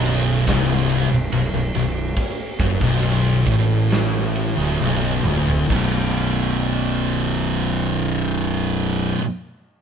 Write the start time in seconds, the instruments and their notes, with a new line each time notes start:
Already playing: fingered electric bass B0, distorted electric guitar B1
0.06 ride
0.47 fingered electric bass C1, distorted electric guitar C2, kick, snare, ride
0.90 ride
1.11 fingered electric bass B0, distorted electric guitar B1
1.32 fingered electric bass B0, distorted electric guitar B1, ride
1.53 fingered electric bass B0, distorted electric guitar B1
1.74 fingered electric bass B0, distorted electric guitar B1, ride
2.17 kick, ride
2.59 fingered electric bass F#1, distorted electric guitar F#2, kick, ride
2.81 fingered electric bass B0, distorted electric guitar B1, kick
3.03 ride
3.27 snare
3.46 fingered electric bass A1, distorted electric guitar A2, kick, ride
3.91 snare, ride
4.36 ride
4.56 fingered electric bass D1, distorted electric guitar D2
4.79 fingered electric bass B0, distorted electric guitar B1, high tom
5.23 fingered electric bass D1, distorted electric guitar D2, mid tom
5.48 floor tom
5.67 fingered electric bass B0, distorted electric guitar B1 F#2, kick, crash
5.71 distorted electric guitar B2